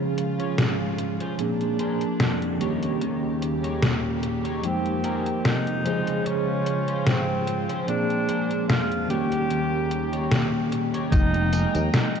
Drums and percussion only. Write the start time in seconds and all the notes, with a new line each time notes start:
0.18 closed hi-hat
0.40 closed hi-hat
0.58 snare, closed hi-hat
0.98 closed hi-hat
1.20 closed hi-hat
1.39 closed hi-hat
1.61 closed hi-hat
1.79 closed hi-hat
2.01 closed hi-hat
2.20 snare, closed hi-hat
2.42 closed hi-hat
2.61 closed hi-hat
2.83 closed hi-hat
3.02 closed hi-hat
3.42 closed hi-hat
3.64 closed hi-hat
3.83 snare, closed hi-hat
4.23 closed hi-hat
4.45 closed hi-hat
4.63 closed hi-hat
4.86 closed hi-hat
5.04 closed hi-hat
5.26 closed hi-hat
5.45 snare, closed hi-hat
5.67 closed hi-hat
5.86 closed hi-hat
6.07 closed hi-hat
6.26 closed hi-hat
6.66 closed hi-hat
6.88 closed hi-hat
7.07 snare, closed hi-hat
7.47 closed hi-hat
7.69 closed hi-hat
7.88 closed hi-hat
8.10 closed hi-hat
8.29 closed hi-hat
8.51 closed hi-hat
8.70 snare, closed hi-hat
8.92 closed hi-hat
9.10 closed hi-hat
9.32 closed hi-hat
9.50 closed hi-hat
9.91 closed hi-hat
10.13 closed hi-hat
10.31 snare, closed hi-hat
10.72 closed hi-hat
10.94 closed hi-hat
11.12 kick, closed hi-hat, tambourine
11.34 closed hi-hat
11.53 closed hi-hat, tambourine
11.75 closed hi-hat, tambourine
11.94 snare, closed hi-hat, tambourine
12.16 closed hi-hat